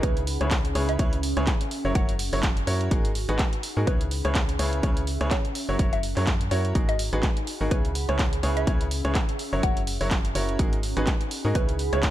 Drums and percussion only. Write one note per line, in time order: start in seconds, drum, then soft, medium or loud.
0.03 kick loud
0.03 closed hi-hat medium
0.17 closed hi-hat medium
0.27 open hi-hat loud
0.41 cross-stick medium
0.41 closed hi-hat soft
0.51 kick loud
0.51 clap loud
0.51 closed hi-hat medium
0.65 closed hi-hat medium
0.75 open hi-hat loud
0.89 closed hi-hat soft
0.99 kick loud
0.99 closed hi-hat medium
1.13 closed hi-hat medium
1.23 open hi-hat loud
1.37 cross-stick medium
1.37 closed hi-hat soft
1.47 kick loud
1.47 clap loud
1.47 closed hi-hat medium
1.61 closed hi-hat medium
1.71 open hi-hat loud
1.95 kick loud
1.95 closed hi-hat medium
2.09 closed hi-hat medium
2.19 open hi-hat loud
2.33 cross-stick medium
2.33 open hi-hat medium
2.43 kick loud
2.43 clap loud
2.43 closed hi-hat medium
2.57 closed hi-hat medium
2.67 open hi-hat loud
2.81 closed hi-hat soft
2.91 kick loud
2.91 closed hi-hat medium
3.05 closed hi-hat medium
3.15 open hi-hat loud
3.29 cross-stick medium
3.29 closed hi-hat soft
3.39 kick loud
3.39 clap loud
3.39 closed hi-hat medium
3.53 closed hi-hat medium
3.63 open hi-hat loud
3.87 kick loud
3.87 closed hi-hat medium
4.01 closed hi-hat medium
4.11 open hi-hat loud
4.25 cross-stick medium
4.25 closed hi-hat soft
4.35 kick loud
4.35 clap loud
4.35 closed hi-hat medium
4.49 closed hi-hat medium
4.59 open hi-hat loud
4.73 closed hi-hat soft
4.83 kick loud
4.83 closed hi-hat medium
4.97 closed hi-hat medium
5.07 open hi-hat loud
5.21 cross-stick medium
5.21 closed hi-hat soft
5.31 kick loud
5.31 clap loud
5.31 closed hi-hat medium
5.45 closed hi-hat medium
5.55 open hi-hat loud
5.79 kick loud
5.79 closed hi-hat medium
5.93 closed hi-hat medium
6.03 open hi-hat loud
6.16 cross-stick medium
6.16 clap soft
6.16 open hi-hat medium
6.27 kick loud
6.27 clap loud
6.27 closed hi-hat medium
6.41 closed hi-hat medium
6.51 open hi-hat loud
6.65 closed hi-hat soft
6.75 kick loud
6.75 closed hi-hat medium
6.89 closed hi-hat medium
6.99 open hi-hat loud
7.13 cross-stick medium
7.13 closed hi-hat soft
7.23 kick loud
7.23 clap loud
7.23 closed hi-hat medium
7.37 closed hi-hat soft
7.47 open hi-hat loud
7.71 kick loud
7.71 closed hi-hat medium
7.85 closed hi-hat medium
7.95 open hi-hat loud
8.09 cross-stick medium
8.09 closed hi-hat soft
8.19 kick loud
8.19 clap loud
8.19 closed hi-hat medium
8.33 closed hi-hat medium
8.43 open hi-hat loud
8.57 closed hi-hat soft
8.67 kick loud
8.67 closed hi-hat medium
8.81 closed hi-hat medium
8.91 open hi-hat loud
9.05 cross-stick medium
9.05 closed hi-hat soft
9.15 kick loud
9.15 clap loud
9.15 closed hi-hat medium
9.29 closed hi-hat soft
9.39 open hi-hat loud
9.63 kick loud
9.63 closed hi-hat medium
9.77 closed hi-hat medium
9.87 open hi-hat loud
10.01 cross-stick medium
10.01 open hi-hat medium
10.11 kick loud
10.11 clap loud
10.11 closed hi-hat medium
10.25 closed hi-hat medium
10.35 open hi-hat loud
10.49 closed hi-hat soft
10.59 kick loud
10.59 closed hi-hat medium
10.73 closed hi-hat medium
10.83 open hi-hat loud
10.97 cross-stick medium
10.97 closed hi-hat soft
11.07 kick loud
11.07 clap loud
11.07 closed hi-hat medium
11.21 closed hi-hat medium
11.31 open hi-hat loud
11.55 kick loud
11.55 closed hi-hat medium
11.69 closed hi-hat medium
11.79 open hi-hat loud
11.93 cross-stick medium
11.93 closed hi-hat soft
12.03 kick loud
12.03 clap loud
12.03 closed hi-hat medium